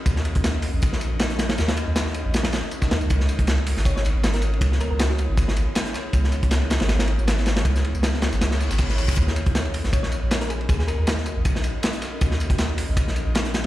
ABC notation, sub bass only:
X:1
M:4/4
L:1/16
Q:"Swing 16ths" 1/4=158
K:Ebphr
V:1 name="Sub bass" clef=bass
E,,3 E,,4 B,,,4 B,,,4- B,,, | E,,3 E,,4 B,,,4 z3 E,, D,, | D,,3 D,,4 A,,,4 A,,,4- A,,, | D,,3 D,,4 A,,,4 z4 z |
D,,3 D,,4 A,,,4 A,,,4- A,,, | D,,3 D,,4 A,,, D,,3 A,,, A,,,4 | E,,3 E,,4 B,,,4 B,,,4- B,,, | E,,3 E,,4 B,,,4 z4 z |
E,,3 E,,4 B,,,4 B,,,4- B,,, |]